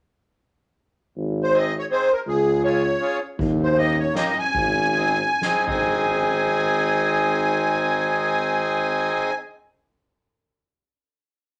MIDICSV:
0, 0, Header, 1, 5, 480
1, 0, Start_track
1, 0, Key_signature, -4, "major"
1, 0, Tempo, 372439
1, 1501, Time_signature, 3, 2, 24, 8
1, 4858, Tempo, 400267
1, 6298, Tempo, 469484
1, 7258, Tempo, 501253
1, 12702, End_track
2, 0, Start_track
2, 0, Title_t, "Accordion"
2, 0, Program_c, 0, 21
2, 1846, Note_on_c, 0, 72, 73
2, 2028, Note_off_c, 0, 72, 0
2, 2031, Note_on_c, 0, 75, 84
2, 2252, Note_off_c, 0, 75, 0
2, 2302, Note_on_c, 0, 73, 68
2, 2387, Note_off_c, 0, 73, 0
2, 2471, Note_on_c, 0, 72, 76
2, 2735, Note_off_c, 0, 72, 0
2, 2741, Note_on_c, 0, 70, 71
2, 2834, Note_off_c, 0, 70, 0
2, 2937, Note_on_c, 0, 68, 76
2, 3384, Note_off_c, 0, 68, 0
2, 3406, Note_on_c, 0, 73, 69
2, 4101, Note_off_c, 0, 73, 0
2, 4681, Note_on_c, 0, 72, 62
2, 4865, Note_off_c, 0, 72, 0
2, 4870, Note_on_c, 0, 75, 83
2, 5121, Note_off_c, 0, 75, 0
2, 5130, Note_on_c, 0, 73, 61
2, 5315, Note_off_c, 0, 73, 0
2, 5338, Note_on_c, 0, 75, 70
2, 5448, Note_off_c, 0, 75, 0
2, 5480, Note_on_c, 0, 75, 67
2, 5585, Note_off_c, 0, 75, 0
2, 5602, Note_on_c, 0, 80, 93
2, 6996, Note_off_c, 0, 80, 0
2, 7045, Note_on_c, 0, 80, 75
2, 10548, Note_off_c, 0, 80, 0
2, 12702, End_track
3, 0, Start_track
3, 0, Title_t, "Accordion"
3, 0, Program_c, 1, 21
3, 1975, Note_on_c, 1, 60, 51
3, 1979, Note_on_c, 1, 63, 43
3, 1987, Note_on_c, 1, 68, 60
3, 2214, Note_off_c, 1, 60, 0
3, 2216, Note_off_c, 1, 63, 0
3, 2220, Note_off_c, 1, 68, 0
3, 2452, Note_on_c, 1, 60, 56
3, 2469, Note_on_c, 1, 63, 50
3, 2473, Note_on_c, 1, 68, 59
3, 2691, Note_off_c, 1, 60, 0
3, 2700, Note_off_c, 1, 63, 0
3, 2702, Note_off_c, 1, 68, 0
3, 3385, Note_on_c, 1, 61, 50
3, 3404, Note_on_c, 1, 65, 46
3, 3409, Note_on_c, 1, 68, 49
3, 3638, Note_off_c, 1, 61, 0
3, 3647, Note_off_c, 1, 65, 0
3, 3650, Note_off_c, 1, 68, 0
3, 3869, Note_on_c, 1, 61, 53
3, 3877, Note_on_c, 1, 65, 51
3, 3886, Note_on_c, 1, 68, 60
3, 4119, Note_off_c, 1, 61, 0
3, 4123, Note_off_c, 1, 65, 0
3, 4127, Note_off_c, 1, 68, 0
3, 4842, Note_on_c, 1, 58, 52
3, 4860, Note_on_c, 1, 63, 50
3, 4861, Note_on_c, 1, 67, 47
3, 5075, Note_off_c, 1, 58, 0
3, 5084, Note_off_c, 1, 63, 0
3, 5084, Note_off_c, 1, 67, 0
3, 5289, Note_on_c, 1, 58, 56
3, 5311, Note_on_c, 1, 67, 66
3, 5313, Note_on_c, 1, 63, 49
3, 5535, Note_off_c, 1, 58, 0
3, 5546, Note_off_c, 1, 67, 0
3, 5547, Note_off_c, 1, 63, 0
3, 6299, Note_on_c, 1, 60, 56
3, 6299, Note_on_c, 1, 63, 53
3, 6307, Note_on_c, 1, 68, 52
3, 6520, Note_off_c, 1, 60, 0
3, 6520, Note_off_c, 1, 63, 0
3, 6524, Note_off_c, 1, 68, 0
3, 6763, Note_on_c, 1, 60, 65
3, 6770, Note_on_c, 1, 63, 52
3, 6787, Note_on_c, 1, 68, 70
3, 6989, Note_off_c, 1, 60, 0
3, 6989, Note_off_c, 1, 63, 0
3, 6992, Note_off_c, 1, 68, 0
3, 7004, Note_on_c, 1, 63, 64
3, 7005, Note_on_c, 1, 60, 80
3, 7007, Note_on_c, 1, 68, 70
3, 10510, Note_off_c, 1, 63, 0
3, 10511, Note_off_c, 1, 60, 0
3, 10513, Note_off_c, 1, 68, 0
3, 12702, End_track
4, 0, Start_track
4, 0, Title_t, "Tuba"
4, 0, Program_c, 2, 58
4, 1500, Note_on_c, 2, 32, 75
4, 2435, Note_off_c, 2, 32, 0
4, 2922, Note_on_c, 2, 37, 95
4, 3861, Note_off_c, 2, 37, 0
4, 4365, Note_on_c, 2, 39, 104
4, 5303, Note_off_c, 2, 39, 0
4, 5791, Note_on_c, 2, 32, 83
4, 6619, Note_off_c, 2, 32, 0
4, 7022, Note_on_c, 2, 32, 68
4, 10526, Note_off_c, 2, 32, 0
4, 12702, End_track
5, 0, Start_track
5, 0, Title_t, "Drums"
5, 4366, Note_on_c, 9, 51, 38
5, 4370, Note_on_c, 9, 36, 86
5, 4495, Note_off_c, 9, 51, 0
5, 4499, Note_off_c, 9, 36, 0
5, 4856, Note_on_c, 9, 51, 35
5, 4976, Note_off_c, 9, 51, 0
5, 5315, Note_on_c, 9, 38, 57
5, 5315, Note_on_c, 9, 51, 37
5, 5435, Note_off_c, 9, 38, 0
5, 5435, Note_off_c, 9, 51, 0
5, 5574, Note_on_c, 9, 51, 32
5, 5694, Note_off_c, 9, 51, 0
5, 5789, Note_on_c, 9, 36, 78
5, 5909, Note_off_c, 9, 36, 0
5, 6294, Note_on_c, 9, 51, 37
5, 6397, Note_off_c, 9, 51, 0
5, 6753, Note_on_c, 9, 38, 57
5, 6753, Note_on_c, 9, 51, 44
5, 6856, Note_off_c, 9, 38, 0
5, 6856, Note_off_c, 9, 51, 0
5, 7020, Note_on_c, 9, 36, 68
5, 7026, Note_on_c, 9, 49, 60
5, 7122, Note_off_c, 9, 36, 0
5, 7128, Note_off_c, 9, 49, 0
5, 12702, End_track
0, 0, End_of_file